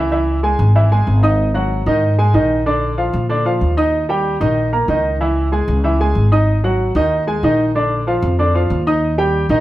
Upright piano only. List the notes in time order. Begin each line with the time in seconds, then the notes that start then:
0.12 E3 E4 E5
0.43 G#3 G#4 G#5
0.75 E3 E4 E5
0.92 G#3 G#4 G#5
1.23 D#4 D#5 D#6
1.54 F#3 F#4 F#5
1.87 D#3 D#4 D#5
2.18 G#3 G#4 G#5
2.34 D#3 D#4 D#5
2.66 D3 D4 D5
2.97 F3 F4 F5
3.29 D3 D4 D5
3.45 F3 F4 F5
3.77 D#4 D#5 D#6
4.09 G3 G4 G5
4.40 D#3 D#4 D#5
4.73 A#3 A#4 A#5
4.88 D#3 D#4 D#5
5.21 E3 E4 E5
5.52 G#3 G#4 G#5
5.84 E3 E4 E5
6.00 G#3 G#4 G#5
6.32 D#4 D#5 D#6
6.64 F#3 F#4 F#5
6.96 D#3 D#4 D#5
7.27 G#3 G#4 G#5
7.44 D#3 D#4 D#5
7.75 D3 D4 D5
8.07 F3 F4 F5
8.39 D3 D4 D5
8.55 F3 F4 F5
8.87 D#4 D#5 D#6
9.18 G3 G4 G5
9.50 D#3 D#4 D#5